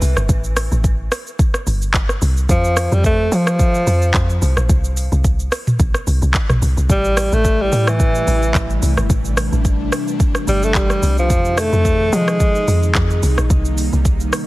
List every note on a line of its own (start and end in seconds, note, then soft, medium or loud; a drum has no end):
0.02 0.15 C2 medium
0.02 open hi-hat medium
0.02 shaker loud
0.17 0.28 G1 medium
0.17 cross-stick medium
0.17 shaker medium
0.29 0.68 A1 loud
0.29 kick loud
0.29 shaker loud
0.44 shaker medium
0.57 cross-stick loud
0.57 open hi-hat medium
0.57 shaker loud
0.72 1.08 A1 loud
0.72 shaker medium
0.84 kick loud
0.84 shaker medium
1.12 cross-stick loud
1.12 open hi-hat medium
1.12 shaker medium
1.27 shaker medium
1.39 kick loud
1.39 shaker medium
1.54 cross-stick medium
1.54 shaker soft
1.67 2.18 G1 medium
1.67 open hi-hat medium
1.67 shaker loud
1.82 shaker medium
1.94 kick loud
1.94 clap loud
1.94 shaker medium
2.09 cross-stick medium
2.09 shaker medium
2.22 2.47 C2 loud
2.22 open hi-hat medium
2.22 shaker loud
2.37 shaker medium
2.49 2.88 F2 loud
2.49 2.95 F3 loud
2.49 kick loud
2.49 shaker loud
2.64 shaker medium
2.77 cross-stick loud
2.77 open hi-hat medium
2.77 shaker loud
2.92 3.29 F2 loud
2.92 3.05 G3 medium
2.92 shaker medium
3.04 3.35 A3 loud
3.04 kick loud
3.04 shaker medium
3.32 3.83 F3 loud
3.32 4.43 F3 loud
3.32 open hi-hat medium
3.32 shaker medium
3.47 cross-stick loud
3.47 shaker medium
3.59 kick loud
3.59 shaker medium
3.75 shaker medium
3.87 4.12 F2 loud
3.87 open hi-hat medium
3.87 shaker loud
4.02 shaker medium
4.14 4.40 F2 loud
4.14 kick loud
4.14 clap loud
4.14 shaker medium
4.30 shaker medium
4.42 4.56 C2 loud
4.42 open hi-hat medium
4.42 shaker loud
4.57 4.68 A#1 medium
4.57 cross-stick medium
4.57 shaker medium
4.69 5.09 C2 loud
4.69 kick loud
4.69 shaker loud
4.84 shaker medium
4.97 open hi-hat medium
4.97 shaker loud
5.12 5.49 C2 loud
5.12 shaker medium
5.24 kick loud
5.24 shaker medium
5.39 shaker medium
5.52 cross-stick loud
5.52 open hi-hat medium
5.52 shaker medium
5.67 mid tom medium
5.67 shaker medium
5.79 5.93 A#1 loud
5.79 kick loud
5.79 shaker medium
5.94 cross-stick medium
5.94 shaker medium
6.07 6.21 C2 loud
6.07 open hi-hat medium
6.07 shaker loud
6.22 6.34 C2 loud
6.22 shaker medium
6.34 kick loud
6.34 clap loud
6.34 shaker medium
6.50 6.61 A#1 medium
6.50 cross-stick medium
6.50 mid tom loud
6.50 shaker medium
6.62 6.76 C2 loud
6.62 open hi-hat medium
6.62 shaker loud
6.77 6.89 C2 medium
6.77 shaker medium
6.90 7.29 A1 loud
6.90 13.19 C3 medium
6.90 11.26 E3 medium
6.90 11.26 G3 medium
6.90 7.35 G3 loud
6.90 11.26 A3 medium
6.90 9.08 E4 loud
6.90 kick loud
6.90 shaker loud
7.05 shaker medium
7.17 cross-stick loud
7.17 open hi-hat medium
7.17 shaker loud
7.32 7.69 A1 loud
7.32 7.63 A3 loud
7.32 shaker medium
7.45 kick loud
7.45 shaker medium
7.61 7.90 G3 loud
7.72 8.23 A2 medium
7.72 open hi-hat medium
7.72 shaker medium
7.87 8.83 E3 loud
7.87 cross-stick loud
7.87 shaker medium
8.00 kick loud
8.00 shaker medium
8.15 shaker medium
8.27 8.53 A1 loud
8.27 open hi-hat medium
8.27 shaker loud
8.42 shaker medium
8.55 8.80 A1 medium
8.55 kick loud
8.55 clap loud
8.55 shaker medium
8.70 shaker medium
8.82 8.96 C2 loud
8.82 open hi-hat medium
8.82 shaker loud
8.97 9.09 G1 medium
8.97 cross-stick medium
8.97 shaker medium
9.10 9.49 A1 loud
9.10 11.28 D4 loud
9.10 kick loud
9.10 shaker loud
9.25 shaker medium
9.37 cross-stick loud
9.37 open hi-hat medium
9.37 shaker loud
9.52 9.89 A1 loud
9.52 shaker medium
9.65 kick medium
9.65 shaker medium
9.92 cross-stick loud
9.92 open hi-hat medium
9.92 shaker loud
10.08 shaker medium
10.20 kick loud
10.20 shaker medium
10.35 cross-stick medium
10.35 shaker soft
10.47 10.98 G1 medium
10.47 10.66 G3 loud
10.47 open hi-hat medium
10.47 shaker loud
10.63 10.78 A3 loud
10.63 shaker medium
10.75 11.18 G3 loud
10.75 kick loud
10.75 clap loud
10.75 shaker medium
10.90 cross-stick medium
10.90 shaker medium
11.02 11.31 C2 loud
11.02 open hi-hat medium
11.02 shaker loud
11.18 11.61 F3 loud
11.18 shaker medium
11.30 11.69 F2 loud
11.30 13.21 D#3 medium
11.30 13.21 F3 medium
11.30 14.47 D#4 medium
11.30 13.21 G#4 medium
11.30 kick loud
11.30 shaker loud
11.45 shaker medium
11.58 12.16 A3 loud
11.58 cross-stick loud
11.58 open hi-hat medium
11.58 shaker loud
11.73 12.09 F2 loud
11.73 shaker medium
11.85 kick medium
11.85 shaker medium
12.13 12.64 F3 loud
12.13 12.96 G#3 loud
12.13 open hi-hat medium
12.13 shaker medium
12.28 cross-stick loud
12.28 shaker medium
12.40 kick loud
12.40 shaker medium
12.55 shaker soft
12.68 12.93 F2 loud
12.68 open hi-hat medium
12.68 shaker medium
12.83 shaker medium
12.95 13.20 F2 loud
12.95 kick loud
12.95 clap loud
12.95 shaker medium
13.10 shaker medium
13.23 13.37 C2 loud
13.23 14.47 C3 medium
13.23 14.47 D#3 medium
13.23 14.47 G3 medium
13.23 14.47 A#3 medium
13.23 open hi-hat medium
13.23 shaker loud
13.38 13.49 A#1 medium
13.38 cross-stick medium
13.38 shaker medium
13.50 13.89 C2 loud
13.50 kick loud
13.50 shaker loud
13.65 shaker medium
13.78 open hi-hat medium
13.78 shaker loud
13.93 14.30 C2 loud
13.93 shaker medium
14.05 kick loud
14.05 shaker medium
14.20 shaker medium
14.33 cross-stick loud
14.33 open hi-hat medium
14.33 shaker medium